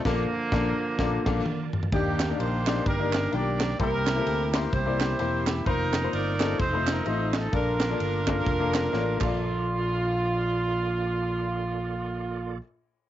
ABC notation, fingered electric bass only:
X:1
M:4/4
L:1/8
Q:"Swing" 1/4=128
K:Bb
V:1 name="Fingered electric bass" clef=bass
B,,, z B,,, z B,,, B,,, z2 | E,,2 B,,,2 G,,,2 _C,,2 | C,,2 D,,2 C,,2 =E,,,2 | F,,,2 G,,,2 F,,,2 A,,,2 |
B,,,2 G,,,2 F,,,2 A,,, B,,,- | B,,,8- | B,,,8 |]